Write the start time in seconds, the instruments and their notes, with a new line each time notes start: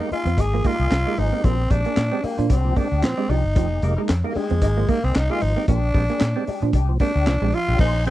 Already playing: tenor saxophone D#4
0.00 tonewheel organ A#3 D#4 G4, clean electric guitar A#3, muted clean electric guitar stroke
0.11 clean electric guitar A#3 D#4 G#4, tenor saxophone F4, muted fingered electric bass stroke, muted clean electric guitar stroke, open hi-hat
0.25 fingered electric bass F2, tonewheel organ F3, clean electric guitar C4, muted clean electric guitar stroke, closed hi-hat
0.38 fingered electric bass G#1, clean electric guitar A#3 D#4 G#4, tonewheel organ D#4 G4, tenor saxophone G#4, muted clean electric guitar stroke, kick, closed hi-hat
0.53 tonewheel organ F3, clean electric guitar A#3
0.64 tonewheel organ G#3 A#3 D#4 G4, clean electric guitar A#3, tenor saxophone F4, muted clean electric guitar stroke, kick, open hi-hat
0.79 fingered electric bass C2, clean electric guitar A#3 D#4 G#4
0.91 fingered electric bass C2, snare, clap, closed hi-hat
1.06 tonewheel organ G#3 A#3 D#4 G4, clean electric guitar G#3, muted clean electric guitar stroke
1.17 fingered electric bass G#1, tonewheel organ F3, clean electric guitar A#3 D#4 G#4, tenor saxophone D#4, muted clean electric guitar stroke, open hi-hat
1.32 tonewheel organ G#3 A#3 D#4 G4, clean electric guitar C4, muted clean electric guitar stroke
1.44 fingered electric bass A#1, tonewheel organ A#2 F3, clean electric guitar G#3 A#3 D4 G4, tenor saxophone C4, kick, closed hi-hat
1.70 fingered electric bass A#1, tonewheel organ G#3 C4 D4 G4, tenor saxophone D4, muted clean electric guitar stroke, kick, closed hi-hat
1.85 clean electric guitar G#3 A#3 D4 G#4, tonewheel organ D4 G4, closed hi-hat
1.97 fingered electric bass A#2, snare, clap, closed hi-hat
2.11 tonewheel organ G#3 C4 D4 G4, clean electric guitar C4, muted clean electric guitar stroke
2.23 clean electric guitar G#3 D4 G4, tenor saxophone A#3, muted fingered electric bass stroke, muted clean electric guitar stroke, open hi-hat
2.38 tonewheel organ A#2 F3, fingered electric bass A#2, clean electric guitar D4, muted clean electric guitar stroke, closed hi-hat
2.49 fingered electric bass C2, clean electric guitar G#3 D4 G4, tenor saxophone C4, tonewheel organ D4 G4, kick, closed hi-hat
2.65 tonewheel organ A#2 F3
2.76 tonewheel organ G#3 C4 D4 G4, clean electric guitar A#3, tenor saxophone D4, muted clean electric guitar stroke, kick, open hi-hat
2.91 fingered electric bass D2, clean electric guitar G#3 D4 G4
3.03 tonewheel organ A#2 F3, tenor saxophone C4, muted clean electric guitar stroke, snare, clap, closed hi-hat
3.17 tonewheel organ G#3 C4 D4 G4, clean electric guitar G#3
3.29 fingered electric bass C2, clean electric guitar F3 G#3 D4 G4, tonewheel organ D4 G4, tenor saxophone D#4, open hi-hat
3.44 fingered electric bass G1, muted clean electric guitar stroke
3.55 fingered electric bass F1, clean electric guitar F3 A#3 D#4 G#4, tonewheel organ F3, kick, closed hi-hat
3.82 fingered electric bass F1, tonewheel organ G#3 A#3 D#4 G4, muted clean electric guitar stroke, closed hi-hat
3.97 clean electric guitar G#3 A#3 D#4 A#4, tonewheel organ D#4 G4
4.09 fingered electric bass F2, snare, clap, closed hi-hat
4.24 tonewheel organ G#3 A#3 D#4 G4, clean electric guitar A#3, muted clean electric guitar stroke
4.29 tenor saxophone A#3
4.35 tenor saxophone G#3, clean electric guitar A#3 D#4 G#4, muted fingered electric bass stroke, muted clean electric guitar stroke, open hi-hat
4.50 fingered electric bass F2, tonewheel organ F3, clean electric guitar C4, muted clean electric guitar stroke, closed hi-hat
4.62 fingered electric bass G#1, clean electric guitar A#3 D#4 G#4, tonewheel organ D#4 G4, muted clean electric guitar stroke, kick, closed hi-hat
4.77 tonewheel organ F3, clean electric guitar A#3
4.88 tonewheel organ G#3 A#3 D#4 G4, clean electric guitar A#3, tenor saxophone A#3, muted clean electric guitar stroke, kick, open hi-hat
5.04 fingered electric bass C2, clean electric guitar A#3 D#4 G#4, tenor saxophone C4
5.15 fingered electric bass C2, tenor saxophone D#4, muted clean electric guitar stroke, snare, clap, closed hi-hat
5.30 tonewheel organ G#3 A#3 D#4 G4, clean electric guitar G#3 A#3 D#4 G#4, tenor saxophone F4
5.41 fingered electric bass G#1, tonewheel organ F3, tenor saxophone D#4, muted clean electric guitar stroke, open hi-hat
5.56 tonewheel organ G#3 A#3 D#4 G4, clean electric guitar C4, muted clean electric guitar stroke
5.68 fingered electric bass A#1, tonewheel organ A#2 F3, clean electric guitar G#3 A#3 D4 G4, tenor saxophone D4, kick, closed hi-hat
5.94 fingered electric bass A#1, tonewheel organ G#3 C4 D4 G4, muted clean electric guitar stroke, kick, open hi-hat
6.09 clean electric guitar G#3 A#3 D4 G#4, tonewheel organ D4 G4, closed hi-hat
6.21 fingered electric bass A#2, snare, clap, closed hi-hat
6.36 tonewheel organ G#3 C4 D4 G4, clean electric guitar C4, muted clean electric guitar stroke
6.47 clean electric guitar G#3 D4 G4, muted clean electric guitar stroke, muted fingered electric bass stroke, open hi-hat
6.62 tonewheel organ A#2 F3, fingered electric bass A#2, clean electric guitar D4, muted clean electric guitar stroke, closed hi-hat
6.73 fingered electric bass C2, clean electric guitar G#3 D4 G4, tonewheel organ D4 G4, kick, closed hi-hat
6.89 tonewheel organ A#2 F3
7.00 tonewheel organ G#3 C4 D4 G4, clean electric guitar A#3, tenor saxophone D4, muted clean electric guitar stroke, kick, open hi-hat
7.15 fingered electric bass D2, clean electric guitar G#3 D4 G4
7.26 fingered electric bass C2, tonewheel organ A#2 F3, muted clean electric guitar stroke, snare, clap, closed hi-hat
7.42 fingered electric bass A#1, tonewheel organ G#3 C4 D4 G4, clean electric guitar G#3, muted clean electric guitar stroke
7.52 clean electric guitar F3, tonewheel organ D4 G4, tenor saxophone F4, open hi-hat
7.68 fingered electric bass A#1, clean electric guitar G#3 D4 G4
7.79 fingered electric bass A#1, tonewheel organ A#2, clean electric guitar A#3 C#4 G#4 C5, tenor saxophone D#4, string section C#5 F5 G#5 C6, kick, crash
8.05 tonewheel organ C#3 G#3 C4, tenor saxophone C#4, muted clean electric guitar stroke, closed hi-hat